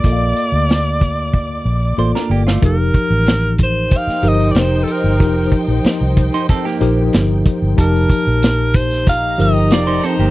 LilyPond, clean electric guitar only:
\new Staff \with { instrumentName = "Clean electric guitar" } { \time 4/4 \key f \mixolydian \tempo 4 = 93 r2. c''16 <d' bes'>16 <bes g'>16 <a f'>16~ | <a f'>16 r2. r8. | r4. r16 <ees' c''>16 <c' a'>16 <bes g'>4. r16 | r2. <f' d''>16 <ees' c''>16 <c' a'>16 <bes g'>16 | }